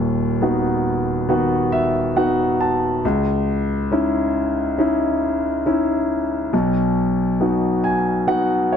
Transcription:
0, 0, Header, 1, 2, 480
1, 0, Start_track
1, 0, Tempo, 875912
1, 1662, Time_signature, 4, 2, 24, 8
1, 4804, End_track
2, 0, Start_track
2, 0, Title_t, "Grand piano"
2, 0, Program_c, 0, 0
2, 0, Control_c, 0, 64, 127
2, 0, Note_on_c, 0, 27, 68
2, 0, Note_on_c, 0, 39, 73
2, 228, Note_on_c, 0, 59, 54
2, 228, Note_on_c, 0, 63, 51
2, 233, Note_on_c, 0, 66, 61
2, 692, Note_off_c, 0, 59, 0
2, 692, Note_off_c, 0, 63, 0
2, 695, Note_off_c, 0, 66, 0
2, 705, Note_on_c, 0, 59, 62
2, 709, Note_on_c, 0, 51, 53
2, 711, Note_on_c, 0, 66, 69
2, 944, Note_on_c, 0, 76, 77
2, 1167, Note_off_c, 0, 76, 0
2, 1169, Note_off_c, 0, 59, 0
2, 1171, Note_off_c, 0, 51, 0
2, 1172, Note_off_c, 0, 66, 0
2, 1187, Note_on_c, 0, 59, 56
2, 1187, Note_on_c, 0, 78, 78
2, 1188, Note_on_c, 0, 63, 53
2, 1190, Note_on_c, 0, 66, 64
2, 1408, Note_off_c, 0, 78, 0
2, 1428, Note_on_c, 0, 81, 73
2, 1640, Note_off_c, 0, 27, 0
2, 1641, Note_off_c, 0, 39, 0
2, 1648, Note_off_c, 0, 81, 0
2, 1649, Note_off_c, 0, 59, 0
2, 1650, Note_off_c, 0, 63, 0
2, 1651, Note_off_c, 0, 66, 0
2, 1669, Control_c, 0, 64, 0
2, 1671, Note_on_c, 0, 37, 76
2, 1762, Control_c, 0, 64, 127
2, 2146, Note_on_c, 0, 61, 60
2, 2151, Note_on_c, 0, 63, 50
2, 2151, Note_on_c, 0, 64, 65
2, 2607, Note_off_c, 0, 61, 0
2, 2609, Note_off_c, 0, 63, 0
2, 2610, Note_off_c, 0, 64, 0
2, 2621, Note_on_c, 0, 61, 63
2, 2624, Note_on_c, 0, 63, 56
2, 2628, Note_on_c, 0, 64, 67
2, 3084, Note_off_c, 0, 61, 0
2, 3086, Note_off_c, 0, 63, 0
2, 3088, Note_off_c, 0, 64, 0
2, 3101, Note_on_c, 0, 63, 50
2, 3102, Note_on_c, 0, 61, 58
2, 3106, Note_on_c, 0, 64, 64
2, 3560, Note_off_c, 0, 37, 0
2, 3565, Note_off_c, 0, 61, 0
2, 3565, Note_off_c, 0, 63, 0
2, 3567, Note_off_c, 0, 64, 0
2, 3579, Note_on_c, 0, 35, 73
2, 3579, Note_on_c, 0, 47, 76
2, 3585, Control_c, 0, 64, 0
2, 3676, Control_c, 0, 64, 127
2, 4056, Note_on_c, 0, 59, 52
2, 4061, Note_on_c, 0, 63, 45
2, 4063, Note_on_c, 0, 66, 54
2, 4296, Note_on_c, 0, 80, 70
2, 4521, Note_off_c, 0, 80, 0
2, 4524, Note_off_c, 0, 59, 0
2, 4526, Note_off_c, 0, 63, 0
2, 4527, Note_off_c, 0, 66, 0
2, 4533, Note_on_c, 0, 59, 57
2, 4536, Note_on_c, 0, 63, 52
2, 4536, Note_on_c, 0, 78, 78
2, 4539, Note_on_c, 0, 66, 66
2, 4763, Note_off_c, 0, 78, 0
2, 4781, Note_on_c, 0, 73, 69
2, 4804, Note_off_c, 0, 35, 0
2, 4804, Note_off_c, 0, 47, 0
2, 4804, Note_off_c, 0, 59, 0
2, 4804, Note_off_c, 0, 63, 0
2, 4804, Note_off_c, 0, 66, 0
2, 4804, Note_off_c, 0, 73, 0
2, 4804, End_track
0, 0, End_of_file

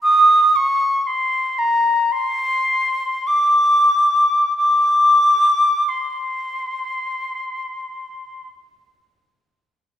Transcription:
0, 0, Header, 1, 2, 480
1, 0, Start_track
1, 0, Tempo, 500000
1, 9590, End_track
2, 0, Start_track
2, 0, Title_t, "Flute"
2, 0, Program_c, 0, 73
2, 26, Note_on_c, 0, 87, 102
2, 534, Note_on_c, 0, 85, 98
2, 549, Note_off_c, 0, 87, 0
2, 1021, Note_on_c, 0, 84, 87
2, 1036, Note_off_c, 0, 85, 0
2, 1521, Note_on_c, 0, 82, 87
2, 1535, Note_off_c, 0, 84, 0
2, 2034, Note_on_c, 0, 84, 97
2, 2048, Note_off_c, 0, 82, 0
2, 3138, Note_on_c, 0, 86, 95
2, 3153, Note_off_c, 0, 84, 0
2, 4379, Note_off_c, 0, 86, 0
2, 4384, Note_on_c, 0, 86, 99
2, 5648, Note_on_c, 0, 84, 74
2, 5663, Note_off_c, 0, 86, 0
2, 8146, Note_off_c, 0, 84, 0
2, 9590, End_track
0, 0, End_of_file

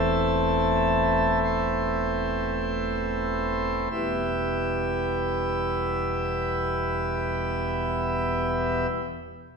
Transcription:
0, 0, Header, 1, 2, 480
1, 0, Start_track
1, 0, Key_signature, 1, "minor"
1, 0, Tempo, 500000
1, 9186, End_track
2, 0, Start_track
2, 0, Title_t, "Pipe organ"
2, 0, Program_c, 0, 19
2, 0, Note_on_c, 0, 28, 61
2, 0, Note_on_c, 0, 40, 61
2, 0, Note_on_c, 0, 57, 52
2, 0, Note_on_c, 0, 60, 58
2, 0, Note_on_c, 0, 64, 54
2, 0, Note_on_c, 0, 69, 125
2, 1337, Note_off_c, 0, 69, 0
2, 1382, Note_on_c, 0, 72, 96
2, 3726, Note_off_c, 0, 40, 0
2, 3726, Note_off_c, 0, 60, 0
2, 3727, Note_off_c, 0, 28, 0
2, 3728, Note_off_c, 0, 57, 0
2, 3728, Note_off_c, 0, 72, 0
2, 3731, Note_off_c, 0, 64, 0
2, 3750, Note_on_c, 0, 40, 59
2, 3757, Note_on_c, 0, 76, 57
2, 3758, Note_on_c, 0, 28, 59
2, 3758, Note_on_c, 0, 55, 51
2, 3758, Note_on_c, 0, 67, 52
2, 3760, Note_on_c, 0, 64, 48
2, 3761, Note_on_c, 0, 47, 52
2, 3763, Note_on_c, 0, 59, 49
2, 8504, Note_off_c, 0, 40, 0
2, 8511, Note_off_c, 0, 76, 0
2, 8512, Note_off_c, 0, 28, 0
2, 8512, Note_off_c, 0, 55, 0
2, 8512, Note_off_c, 0, 67, 0
2, 8514, Note_off_c, 0, 64, 0
2, 8515, Note_off_c, 0, 47, 0
2, 8517, Note_off_c, 0, 59, 0
2, 9186, End_track
0, 0, End_of_file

